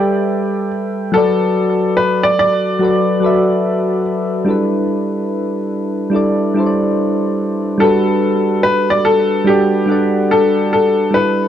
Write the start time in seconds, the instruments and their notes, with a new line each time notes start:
Already playing: synth keys G3 G4 A4 B4 E5 G5, upright piano D5
1.12 synth keys F#3 F#4 A4, upright piano A4
1.16 synth keys B4 D5
1.97 upright piano B4
2.23 upright piano D5
2.39 upright piano D5
2.79 synth keys F#3 F#4 A4 B4
2.84 synth keys D5
3.20 synth keys F#3 F#4 A4
3.24 synth keys B4 E5
4.44 synth keys G3 D4 E4
4.49 synth keys A4 B4
6.10 synth keys G3 D4 E4
6.14 synth keys A4 D5
6.54 synth keys G3 D4 E4
6.58 synth keys A4 C5
6.66 synth keys D5
7.78 synth keys G3 D4 F#4, upright piano A4
7.82 synth keys A4 B4
8.63 upright piano B4
8.90 upright piano D5
9.05 upright piano A4
9.44 synth keys G3 D4 F#4, upright piano G4
9.49 synth keys A4 D5
9.86 synth keys G3 D4 F#5
9.90 synth keys A4 D5
10.31 upright piano A4
10.73 upright piano A4
11.11 synth keys G3 D4 E4 A4, upright piano B4
11.16 synth keys B4